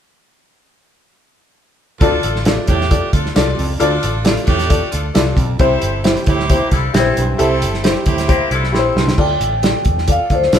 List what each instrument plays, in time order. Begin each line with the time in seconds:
2.00 baritone saxophone D2, picked electric bass D2, upright piano D3 F4 A4 D5, saxophone section D4 F4 A4, kick, closed hi-hat
2.23 picked electric bass A1, closed hi-hat
2.36 snare
2.45 saxophone section A3 D4 F4, upright piano F4 A4 D5, snare, closed hi-hat
2.67 picked electric bass E2, baritone saxophone A2, saxophone section A3 D4 G4, kick, closed hi-hat
2.81 snare
2.90 upright piano F4 A4 D5, kick, closed hi-hat
3.13 picked electric bass D2, saxophone section D4 F4 A4, kick, closed hi-hat
3.26 snare
3.35 picked electric bass C2, saxophone section D4 F4 A4, upright piano F4 A4 D5, snare, closed hi-hat
3.58 picked electric bass C#2, baritone saxophone F2, open hi-hat
3.80 baritone saxophone D2, picked electric bass D2, upright piano D3 F4 A4 D5, saxophone section D4 F4 A4, closed hi-hat
4.03 picked electric bass A1, closed hi-hat
4.24 saxophone section A3 D4 F4, upright piano E4 A4 D5, snare, closed hi-hat
4.30 upright piano F4
4.37 closed hi-hat
4.46 picked electric bass E2, baritone saxophone A2, saxophone section A3 D4 G4, kick, closed hi-hat
4.59 snare, closed hi-hat
4.69 upright piano F4 A4 D5, kick, closed hi-hat
4.91 picked electric bass D2, saxophone section D4 F4 A4, closed hi-hat
5.14 picked electric bass C2, saxophone section D4 F4 A4, upright piano E4 A4 D5, snare, closed hi-hat
5.20 upright piano F4
5.36 picked electric bass B1, baritone saxophone F2, kick, closed hi-hat
5.58 picked electric bass C2, baritone saxophone C3, upright piano C3 E4 G4 C5, saxophone section C4 E4 A4, kick, closed hi-hat
5.82 picked electric bass G1, closed hi-hat
6.04 saxophone section C4 E4 G4, upright piano E4 G4 C5, snare, closed hi-hat
6.17 closed hi-hat
6.26 picked electric bass D2, baritone saxophone A2, saxophone section C4 E4 G4, kick, closed hi-hat
6.40 snare
6.49 clean electric guitar A#3 G4, upright piano E4 G4 C5, kick, closed hi-hat
6.71 picked electric bass C2, clean electric guitar G3 E4, saxophone section D4 F4 A4, kick, closed hi-hat
6.93 picked electric bass A#1, clean electric guitar E3 C4, saxophone section C4 E4 A4, upright piano E4 G4 A#4, snare, closed hi-hat
6.99 upright piano C5
7.17 picked electric bass B1, baritone saxophone G2, closed hi-hat
7.38 picked electric bass C2, baritone saxophone C3, upright piano C3 E4 G4 A4, saxophone section C4 E4 A4, closed hi-hat
7.62 picked electric bass G1, closed hi-hat
7.74 snare
7.83 saxophone section C4 E4 G4, upright piano E4 G4 C5, snare, closed hi-hat
8.05 picked electric bass D2, baritone saxophone A2, saxophone section C4 E4 G4, kick, closed hi-hat
8.18 snare, closed hi-hat
8.28 clean electric guitar A#3 G4, upright piano E4 G4 C5, kick, closed hi-hat
8.51 picked electric bass C2, clean electric guitar G3 E4, saxophone section D4 F4 A4, closed hi-hat
8.64 snare
8.72 picked electric bass A#1, clean electric guitar E3 C4, saxophone section C4 E4 A4, upright piano E4 G4 B4, snare
8.79 upright piano C5
8.95 picked electric bass C2, baritone saxophone G2, snare
9.08 snare
9.18 picked electric bass D2, upright piano D3 F4 A4 D5, vibraphone G5, kick, crash
9.40 picked electric bass A1, closed hi-hat
9.63 upright piano F4 A4 D5, snare, closed hi-hat
9.85 picked electric bass E2, kick, closed hi-hat
9.98 snare
10.07 upright piano F4 A4 D5, saxophone section F4 A4 D5, kick, closed hi-hat
10.12 vibraphone F5
10.30 picked electric bass D2, upright piano F4 A4 D5, kick, closed hi-hat
10.35 vibraphone C5
10.43 snare
10.53 picked electric bass C2, upright piano F4 A4 D5, snare, closed hi-hat